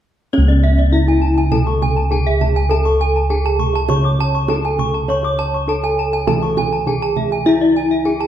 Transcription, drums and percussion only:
0.34 kendang high medium
0.48 kendang slap soft
0.63 kendang slap soft
0.93 kendang slap soft
1.08 kendang slap soft
1.38 kendang slap soft
1.52 kendang high medium
1.52 kendang low medium
1.67 kendang slap soft
1.82 kendang slap soft
1.82 kendang high soft
1.82 kendang low soft
2.12 kendang slap soft
2.12 kendang low soft
2.41 kendang slap soft
2.41 kendang high medium
2.41 kendang low medium
2.56 kendang slap soft
2.71 kendang high soft
2.86 kendang slap soft
3.00 kendang slap soft
3.30 kendang slap soft
3.44 kendang slap soft
3.59 kendang low medium
3.74 kendang slap soft
3.89 kendang high medium
3.89 kendang low medium
4.04 kendang slap soft
4.18 kendang slap soft
4.48 kendang slap soft
4.48 kendang high medium
4.79 kendang slap soft
4.79 kendang low medium
4.94 kendang slap soft
5.08 kendang high medium
5.23 kendang slap soft
5.38 kendang slap soft
5.68 kendang slap soft
5.83 kendang slap soft
6.13 kendang slap soft
6.27 kendang high medium
6.27 kendang low medium
6.42 kendang slap soft
6.57 kendang slap soft
6.57 kendang high soft
6.57 kendang low soft
6.86 kendang slap soft
6.86 kendang low soft
7.16 kendang slap soft
7.16 kendang high soft
7.16 kendang low medium
7.31 kendang slap soft
7.46 kendang high medium
7.76 kendang slap soft
8.05 kendang slap soft
8.20 kendang slap soft

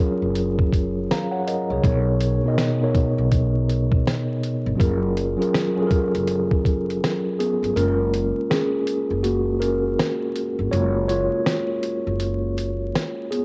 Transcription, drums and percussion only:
0.35 closed hi-hat medium
0.59 kick medium
0.73 kick medium
0.73 closed hi-hat medium
1.11 snare loud
1.11 closed hi-hat medium
1.47 closed hi-hat medium
1.83 kick medium
1.83 closed hi-hat medium
2.21 closed hi-hat medium
2.58 snare loud
2.58 closed hi-hat medium
2.94 kick medium
2.94 closed hi-hat medium
3.31 kick medium
3.31 closed hi-hat medium
3.69 closed hi-hat medium
3.92 kick medium
4.07 snare loud
4.07 closed hi-hat medium
4.43 closed hi-hat medium
4.80 kick medium
4.80 closed hi-hat medium
5.17 closed hi-hat medium
5.42 closed hi-hat soft
5.54 snare loud
5.54 closed hi-hat medium
5.91 kick medium
5.91 closed hi-hat medium
6.15 closed hi-hat soft
6.27 closed hi-hat medium
6.51 kick medium
6.65 kick medium
6.65 closed hi-hat medium
6.90 closed hi-hat soft
7.04 snare loud
7.04 closed hi-hat medium
7.40 closed hi-hat medium
7.64 closed hi-hat soft
7.77 closed hi-hat medium
8.14 closed hi-hat medium
8.51 snare loud
8.51 closed hi-hat medium
8.87 closed hi-hat medium
9.24 closed hi-hat medium
9.62 closed hi-hat medium
9.99 snare loud
9.99 closed hi-hat medium
10.36 closed hi-hat medium
10.73 closed hi-hat medium
11.09 closed hi-hat medium
11.46 snare loud
11.46 closed hi-hat medium
11.83 closed hi-hat medium
12.20 closed hi-hat medium
12.58 closed hi-hat medium
12.95 snare loud
12.95 closed hi-hat medium
13.32 closed hi-hat medium

